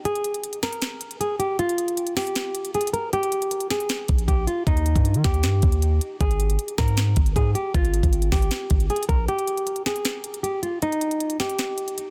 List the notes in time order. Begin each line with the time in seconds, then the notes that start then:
0.05 G#4, closed hi-hat
0.15 closed hi-hat
0.24 closed hi-hat
0.34 closed hi-hat
0.44 closed hi-hat
0.53 closed hi-hat
0.63 A#4, snare, closed hi-hat
0.72 closed hi-hat
0.82 snare, closed hi-hat
1.01 closed hi-hat
1.11 closed hi-hat
1.21 G#4, closed hi-hat
1.39 G4, closed hi-hat
1.59 F4, closed hi-hat
1.69 closed hi-hat
1.78 closed hi-hat
1.88 closed hi-hat
1.97 closed hi-hat
2.07 closed hi-hat
2.17 G4, snare, open hi-hat
2.27 closed hi-hat
2.35 snare, closed hi-hat
2.55 closed hi-hat
2.65 closed hi-hat
2.74 G#4, closed hi-hat
2.81 closed hi-hat
2.87 closed hi-hat
2.93 A#4, closed hi-hat
3.13 G4, closed hi-hat
3.23 closed hi-hat
3.32 closed hi-hat
3.42 closed hi-hat
3.51 closed hi-hat
3.60 closed hi-hat
3.70 G#4, snare, closed hi-hat
3.80 closed hi-hat
3.89 snare, closed hi-hat
4.08 A#1, kick, closed hi-hat
4.18 closed hi-hat
4.28 A#1 G4, kick, closed hi-hat
4.47 F4, closed hi-hat
4.67 D#2 D#4, kick, closed hi-hat
4.77 closed hi-hat
4.86 closed hi-hat
4.96 G2, kick, closed hi-hat
5.05 closed hi-hat
5.14 D#3, closed hi-hat
5.24 D#2 G4, kick, snare, closed hi-hat, open hi-hat
5.34 closed hi-hat
5.43 G2, snare, closed hi-hat
5.62 D#2, kick, closed hi-hat
5.72 closed hi-hat
5.82 closed hi-hat
6.01 closed hi-hat
6.21 G#1 G#4, kick, closed hi-hat
6.31 closed hi-hat
6.40 closed hi-hat
6.50 closed hi-hat
6.59 closed hi-hat
6.68 closed hi-hat
6.78 G#2 A#4, kick, snare, closed hi-hat
6.88 closed hi-hat
6.97 snare, closed hi-hat
7.16 G#1, kick, closed hi-hat
7.26 closed hi-hat
7.36 G#2 G#4, kick, closed hi-hat
7.55 G4, closed hi-hat
7.74 G#1 F4, kick, closed hi-hat
7.85 closed hi-hat
7.94 closed hi-hat
8.03 G#1, kick, closed hi-hat
8.13 closed hi-hat
8.22 closed hi-hat
8.32 G#1 G4, kick, snare, open hi-hat
8.42 closed hi-hat
8.51 snare, closed hi-hat
8.70 G#1, kick, closed hi-hat
8.80 closed hi-hat
8.90 G#4, closed hi-hat
8.96 closed hi-hat
9.03 closed hi-hat
9.09 A#1 A#4, kick, closed hi-hat
9.28 G4, closed hi-hat
9.39 closed hi-hat
9.47 closed hi-hat
9.57 closed hi-hat
9.67 closed hi-hat
9.76 closed hi-hat
9.86 G#4, snare, closed hi-hat
9.96 closed hi-hat
10.05 snare, closed hi-hat
10.24 closed hi-hat
10.34 closed hi-hat
10.43 G4, closed hi-hat
10.63 F4, closed hi-hat
10.82 D#4, closed hi-hat
10.92 closed hi-hat
11.01 closed hi-hat
11.11 closed hi-hat
11.20 closed hi-hat
11.30 closed hi-hat
11.40 G4, snare, closed hi-hat, open hi-hat
11.49 closed hi-hat
11.59 snare, closed hi-hat
11.78 closed hi-hat
11.88 closed hi-hat
11.98 closed hi-hat